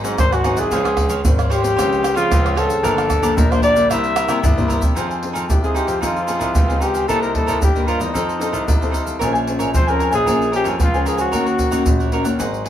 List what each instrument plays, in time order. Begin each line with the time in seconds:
Already playing: nylon-string guitar G#2
0.03 grand piano G#2, nylon-string guitar F#3 C4 D#4, cavaquinho D#4 G#4 C5 F#5, pandeiro, shaker
0.18 grand piano G#1, nylon-string guitar D#3, trumpet C5, pandeiro, tamborim, shaker, surdo
0.31 trumpet F#4, cavaquinho G#4 C5 F#5, pandeiro, tamborim, shaker
0.44 nylon-string guitar F#3 C4 D#4, cavaquinho D#4 G#4 C5 F#5, pandeiro, tamborim
0.57 grand piano C2, cavaquinho G#4 C5 F#5, trumpet G#4, pandeiro, shaker
0.71 grand piano C#2, nylon-string guitar C#3 F3 G#3 C4, cavaquinho F4 C5 C#5 F5, pandeiro, shaker, surdo
0.84 cavaquinho C5 C#5 F5, pandeiro, tamborim, shaker
0.97 nylon-string guitar F3 G#3 C4, pandeiro, tamborim, surdo
1.09 cavaquinho F4 C5 C#5 F5, pandeiro, shaker
1.25 grand piano G#1, nylon-string guitar G#2 F3 G#3 C4, pandeiro, shaker, surdo
1.38 cavaquinho C5 C#5 F5, pandeiro, tamborim, shaker
1.49 cavaquinho F4 C5 C#5 F5, trumpet G4, pandeiro
1.61 nylon-string guitar F3 G#3 C4, cavaquinho C5 C#5 F5, pandeiro, shaker
1.76 grand piano C#2, nylon-string guitar C#3 F3 G#3 C4, cavaquinho F4 C5 C#5 F5, pandeiro, tamborim, shaker, surdo
1.93 pandeiro, shaker
2.02 cavaquinho F4 C5 C#5 F5, pandeiro, tamborim, shaker
2.14 grand piano C#3, nylon-string guitar F3 G#3 C4, cavaquinho F4 C5 C#5 F5, trumpet F4, pandeiro, shaker
2.30 grand piano C#2, nylon-string guitar G#2, pandeiro, tamborim, shaker, surdo
2.43 cavaquinho C5 C#5 F5, pandeiro, tamborim, shaker
2.55 nylon-string guitar F3 G#3 C4, cavaquinho F4 C5 C#5 F5, trumpet A4, pandeiro, tamborim
2.68 grand piano C#3, cavaquinho C5 C#5 F5, pandeiro, shaker
2.83 grand piano G1, nylon-string guitar G2 F3 A#3 D4, cavaquinho G4 A#4 D5 F5, pandeiro, shaker, surdo
2.97 cavaquinho A#4 D5 F5, pandeiro, tamborim, shaker
3.10 pandeiro, tamborim, shaker, surdo
3.22 nylon-string guitar F3 A#3 D4, cavaquinho G4 A#4 D5 F5, pandeiro, shaker
3.36 grand piano A#1, nylon-string guitar D3, trumpet A#4, pandeiro, shaker, surdo
3.50 nylon-string guitar F3 A#3 D4, cavaquinho A#4 D5 F5, trumpet C5, pandeiro, tamborim, shaker
3.62 cavaquinho G4 A#4 D5 F5, trumpet D5, pandeiro, shaker
3.75 nylon-string guitar G3 A#3 E4, cavaquinho A#4 D5 F5, pandeiro, shaker
3.90 grand piano C2, nylon-string guitar C3, cavaquinho E4 A#4 C5 E5, trumpet E5, pandeiro, tamborim, shaker, surdo
4.04 pandeiro, shaker
4.16 cavaquinho E4 A#4 C5 E5, pandeiro, tamborim, shaker
4.28 grand piano C3, nylon-string guitar G3 A#3 E4, cavaquinho E4 A#4 C5 E5, pandeiro, tamborim, shaker
4.43 grand piano C2, nylon-string guitar G2, surdo, pandeiro, shaker
4.56 nylon-string guitar G3 A#3 E4, cavaquinho A#4 C5 E5, surdo, pandeiro, shaker
4.68 cavaquinho E4 A#4 C5 E5, pandeiro, shaker, surdo
4.80 grand piano C3, cavaquinho A#4 C5 E5, pandeiro, shaker, surdo
4.95 grand piano F2, nylon-string guitar F3 C4 D#4 G#4, cavaquinho D#4 G#4 C5 F5, pandeiro, shaker, surdo
5.08 cavaquinho G#4 C5 F5, pandeiro, shaker
5.23 nylon-string guitar C4 D#4 G#4, pandeiro
5.33 grand piano F2, cavaquinho D#4 G#4 C5 F5, pandeiro, shaker
5.49 grand piano C2, nylon-string guitar C3, trumpet G4, pandeiro, shaker, surdo
5.62 nylon-string guitar C4 D#4 G#4, trumpet G#4, cavaquinho G#4 C5 F5, pandeiro, shaker
5.74 cavaquinho D#4 G#4 C5 F5, trumpet G4, pandeiro, shaker
5.87 grand piano F2, cavaquinho G#4 C5 F5, pandeiro, shaker
6.01 grand piano F2, nylon-string guitar F3 C4 D#4 G#4, cavaquinho D#4 G#4 C5 F5, trumpet F4, pandeiro, shaker, surdo
6.16 pandeiro, shaker
6.27 nylon-string guitar C4 D#4 G#4, cavaquinho D#4 G#4 C5 F5, pandeiro, shaker
6.39 grand piano C2, cavaquinho D#4 G#4 C5 F5, pandeiro, shaker
6.55 grand piano C#2, nylon-string guitar C3, pandeiro, shaker, surdo
6.67 nylon-string guitar C4, cavaquinho G#4 C5 F5, pandeiro, shaker
6.71 nylon-string guitar D#4 G#4
6.80 cavaquinho D#4 G#4 C5 F5, trumpet G4, pandeiro, shaker
6.94 cavaquinho G#4 C5 F5, pandeiro, shaker
7.08 grand piano C2, nylon-string guitar C3 G3 A#3 D#4, cavaquinho D#4 A#4 C5 D#5, trumpet A4, pandeiro, shaker, surdo
7.21 trumpet A#4, cavaquinho A#4 C5 D#5, pandeiro, shaker
7.34 nylon-string guitar G3 A#3 D#4, trumpet A4, pandeiro, surdo
7.46 grand piano C2, cavaquinho D#4 A#4 C5 D#5, pandeiro, shaker
7.61 nylon-string guitar G2, grand piano G2, trumpet G4, pandeiro, shaker, surdo
7.75 nylon-string guitar G3 A#3 D#4, cavaquinho A#4 C5 D#5, pandeiro, shaker
7.87 cavaquinho D#4 A#4 C5 D#5, trumpet F4, pandeiro
7.99 grand piano E2, trumpet D#4, cavaquinho A#4 C5 D#5, pandeiro, shaker
8.13 grand piano F2, nylon-string guitar F3 C4 D#4 A4, cavaquinho D#4 A4 C5 F5, pandeiro, shaker, surdo
8.29 pandeiro, shaker
8.39 nylon-string guitar C4 D#4 A4, cavaquinho D#4 A4 C5 F5, pandeiro, shaker
8.52 grand piano C2, cavaquinho D#4 A4 C5 F5, pandeiro, shaker
8.68 grand piano C2, nylon-string guitar C3, pandeiro, shaker, surdo
8.80 nylon-string guitar C4 D#4 A4, cavaquinho A4 C5 F5, pandeiro, shaker
8.91 cavaquinho D#4 A4 C5 F5, pandeiro, shaker
9.05 cavaquinho A4 C5 F5, pandeiro, shaker
9.19 grand piano A#1, nylon-string guitar A#3, cavaquinho A#4 C#5 F5 G#5, pandeiro, shaker, surdo
9.23 nylon-string guitar C#4 G#4 C5
9.33 cavaquinho C#5 F5 G#5, pandeiro, shaker
9.47 nylon-string guitar C#4 G#4 C5, pandeiro
9.59 grand piano A#1, cavaquinho A#4 C#5 F5 G#5, pandeiro, shaker
9.74 grand piano F2, nylon-string guitar F3, trumpet C5, pandeiro, shaker, surdo
9.86 nylon-string guitar C#4 G#4 C5, trumpet A#4, cavaquinho C#5 F5 G#5, pandeiro, shaker
9.99 cavaquinho A#4 C#5 F5 G#5, pandeiro
10.11 grand piano A#1, trumpet G#4, cavaquinho C#5 F5 G#5, pandeiro, shaker
10.26 grand piano A#1, nylon-string guitar A#3 C#4 G#4 C5, cavaquinho A#4 C#5 F5 G#5, pandeiro, shaker, surdo
10.42 pandeiro, shaker
10.52 nylon-string guitar C#4 G#4 C5, cavaquinho A#4 C#5 F5 G#5, pandeiro
10.56 trumpet G4
10.64 grand piano F2, cavaquinho A#4 C#5 F5 G#5, pandeiro, shaker
10.80 grand piano C#2, nylon-string guitar F3, trumpet F4, pandeiro, shaker, surdo
10.94 nylon-string guitar C#4 G#4 C5, cavaquinho C#5 F5 G#5, pandeiro, shaker
11.05 trumpet G#4, cavaquinho A#4 C#5 F5 G#5, pandeiro, shaker
11.17 trumpet F#4, cavaquinho C#5 F5 G#5, pandeiro, shaker
11.31 grand piano D#2, nylon-string guitar D#3 A#3 C#4 F#4, cavaquinho D#4 A#4 C#5 F#5, pandeiro, shaker, surdo
11.45 cavaquinho A#4 C#5 F#5, pandeiro, shaker
11.59 pandeiro, shaker, surdo
11.71 grand piano D#2, nylon-string guitar A#3 C#4 F#4, cavaquinho D#4 A#4 C#5 F#5, pandeiro, shaker
11.86 grand piano A#1, nylon-string guitar A#2, pandeiro, shaker, surdo
11.99 cavaquinho A#4 C#5 F#5, pandeiro, shaker
12.12 nylon-string guitar A#3 C#4 F#4, cavaquinho D#4 A#4 C#5 F#5, pandeiro
12.24 grand piano D#2, cavaquinho A#4 C#5 F#5, pandeiro, shaker
12.39 grand piano G#1, nylon-string guitar G#2 F#3 C4 D#4, cavaquinho D#4 G#4 C5 F#5, pandeiro, shaker, surdo
12.54 pandeiro, shaker
12.64 cavaquinho D#4 G#4 C5 F#5, pandeiro